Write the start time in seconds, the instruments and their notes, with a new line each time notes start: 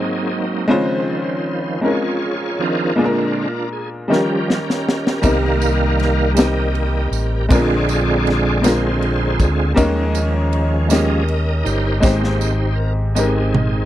Already playing: grand piano G#2 G#3 C4 D#4 F#4 C5, tonewheel organ F#3 A#3 C4 D#4 G#4
0.68 grand piano C#3 G#3 C4 C#4 F4 C5, tonewheel organ D#3 F3
0.72 tonewheel organ C5
1.81 grand piano G#3 C4 C#4 D#4 A#4, tonewheel organ F4
1.85 tonewheel organ G#4 C#5
1.91 grand piano F4
2.59 tonewheel organ D#3 F3 C4 D4 F4 A#4
2.96 grand piano A#2 G#3 A#3 D4 F4 G#4, tonewheel organ D3 G#3
3.00 tonewheel organ C4
3.05 grand piano A#4
3.73 tonewheel organ G#4
4.08 grand piano D#3 G3 C#4 D#4 F4 A#4, tonewheel organ F3 G3 C#4 G4 A#4
4.13 snare
4.50 snare
4.70 snare
4.89 snare
5.07 snare
5.21 fingered electric bass C2, grand piano C3 G3 A#3 C4 D#4 A#4, tonewheel organ D#3 G3 A#3 A#4 F5, kick, ride, tambourine
5.62 ride, tambourine
6.00 snare, ride
6.35 grand piano G3 A#3 C4 D#4 A#4, tonewheel organ G4 A#4 D#5, ride, tambourine
6.39 snare
6.75 tonewheel organ D#3 G3 A#3, ride
7.11 fingered electric bass A1, ride, tambourine
7.49 fingered electric bass A#1, grand piano A#2 G#3 C4 D4 F4 A#4, tonewheel organ D3 G#3 C4 F4 G#4 D5, kick, ride, tambourine
7.89 ride, tambourine
8.27 snare, ride
8.61 grand piano G#3 C4 D4 F4 A#4, tonewheel organ F4 G#4 C5, ride, tambourine
8.66 snare
9.02 ride
9.39 fingered electric bass D2, kick, ride, tambourine
9.74 fingered electric bass D#2, grand piano D#3 G3 A#3 C#4 D#4 A#4, tonewheel organ F3 G#3, kick, ride, tambourine
9.79 grand piano G#3, tonewheel organ C#4
10.15 ride, tambourine
10.53 ride
10.89 tonewheel organ F3 G#3 C#4 A#4, grand piano G#3 A#3 C#4 D#4 G4, ride, tambourine
10.93 tonewheel organ D#5, snare
11.28 ride
11.64 fingered electric bass G1, tonewheel organ D#4 G4 C5, ride, tambourine
12.00 fingered electric bass G#1, grand piano G#2 G#3 C4 D#4 G4 C5, tonewheel organ G#3 A#3 C4, kick, tambourine
12.05 snare
12.24 snare
12.41 tambourine
12.71 tonewheel organ C5
12.76 tonewheel organ A#4
13.15 grand piano G#3 C4 D#4 G4, tonewheel organ C4 D#4 G#4, tambourine
13.19 grand piano A#4
13.55 mid tom